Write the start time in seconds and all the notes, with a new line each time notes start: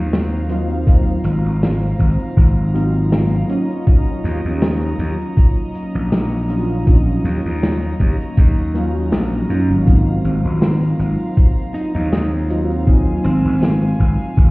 Already playing: D#2 F#3 A#3 C4 D#4 F4 C5 F5 A#5
0.13 snare, closed hi-hat, cabasa
0.49 F#3 A#3 C4 D#4 F4, closed hi-hat, cabasa
0.70 cabasa
0.85 F#3 A#3 C4 D#4 F4, kick, closed hi-hat, cabasa
1.24 G#1, closed hi-hat, cabasa
1.45 G#1, cabasa
1.62 snare, closed hi-hat, cabasa
1.99 G#1, kick, closed hi-hat, cabasa
2.20 cabasa
2.37 G#1, kick, closed hi-hat, cabasa
2.73 F#3 A#3 C4 D#4 F4, closed hi-hat, cabasa
2.96 cabasa
3.12 snare, closed hi-hat, cabasa
3.48 F#3 A#3 C#4 D#4 F4 C#5 D#5, closed hi-hat, cabasa
3.70 cabasa
3.85 F#3 A#3 C#4 D#4 F4, kick, closed hi-hat, cabasa
4.24 D#2, closed hi-hat, cabasa
4.45 D#2, cabasa
4.62 snare, closed hi-hat, cabasa
4.99 D#2, closed hi-hat, cabasa
5.20 cabasa
5.37 kick, closed hi-hat, cabasa
5.75 closed hi-hat, cabasa
5.95 A#1, cabasa
6.12 snare, closed hi-hat, cabasa
6.49 F#3 A#3 C#4 D#4 F4, closed hi-hat, cabasa
6.70 cabasa
6.85 F#3 A#3 C#4 D#4 F4, kick, closed hi-hat, cabasa
7.24 D#2, closed hi-hat, cabasa
7.45 D#2, cabasa
7.63 snare, closed hi-hat, cabasa
8.00 D#2, kick, closed hi-hat, cabasa
8.20 closed hi-hat, cabasa
8.37 D#2, kick, closed hi-hat, cabasa
8.74 F#3 A#3 C#4 D#4 F4, closed hi-hat, cabasa
8.96 cabasa
9.12 A#1, snare, closed hi-hat, cabasa
9.49 F#2 F#3 A#3 C#4 D#4 F4, closed hi-hat, cabasa
9.70 G#1, cabasa
9.85 F#3 A#3 C4 D#4 F4 C5 F5, kick, closed hi-hat, cabasa
10.24 G#1, closed hi-hat, cabasa
10.45 G#1, cabasa
10.62 snare, closed hi-hat, cabasa
10.99 G#1, closed hi-hat, cabasa
11.20 cabasa
11.37 kick, closed hi-hat, cabasa
11.74 D#4, closed hi-hat, cabasa
11.95 D#2 D#4, cabasa
12.12 D#4, snare, closed hi-hat, cabasa
12.49 F#3 A#3 C4 D#4 F4, closed hi-hat, cabasa
12.71 cabasa
12.85 F#3 A#3 C4 D#4 F4 G#5, kick, closed hi-hat, cabasa
13.24 G#1 C4, closed hi-hat, cabasa
13.45 G#1, cabasa
13.61 snare, closed hi-hat, cabasa
14.00 G#1, kick, closed hi-hat, cabasa
14.20 cabasa
14.37 G#1, kick, closed hi-hat, cabasa